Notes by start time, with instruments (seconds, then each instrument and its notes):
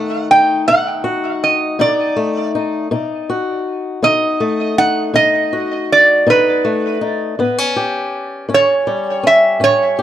Already playing: steel-string acoustic guitar B2 D#3 A3 D#4, resonator guitar played with a steel bar F#5
0.31 steel-string acoustic guitar D#4, resonator guitar played with a steel bar G5
0.68 steel-string acoustic guitar B2 D#4, resonator guitar played with a steel bar F#5
1.04 steel-string acoustic guitar F#4
1.44 resonator guitar played with a steel bar D#5
1.79 steel-string acoustic guitar B2 D#4, resonator guitar played with a steel bar D5
2.16 steel-string acoustic guitar A3
2.55 steel-string acoustic guitar D#4
2.91 steel-string acoustic guitar B2 D#4
3.30 steel-string acoustic guitar F#4
4.02 steel-string acoustic guitar B2 D#4, resonator guitar played with a steel bar D#5
4.40 steel-string acoustic guitar A3
4.78 steel-string acoustic guitar D#4, resonator guitar played with a steel bar F#5
5.14 steel-string acoustic guitar B2 D#4, resonator guitar played with a steel bar D#5
5.53 steel-string acoustic guitar F#4
5.92 resonator guitar played with a steel bar D5
6.26 steel-string acoustic guitar B2 D#4, resonator guitar played with a steel bar B4
6.65 steel-string acoustic guitar A3
7.01 steel-string acoustic guitar D#4
7.39 steel-string acoustic guitar A2 B3
7.58 steel-string acoustic guitar C#4
7.76 steel-string acoustic guitar G4
8.49 steel-string acoustic guitar A2 C#4
8.54 resonator guitar played with a steel bar C#5
8.87 steel-string acoustic guitar G3
9.23 steel-string acoustic guitar C#4, resonator guitar played with a steel bar E5
9.60 steel-string acoustic guitar A2 C#4, resonator guitar played with a steel bar C#5
9.99 steel-string acoustic guitar G4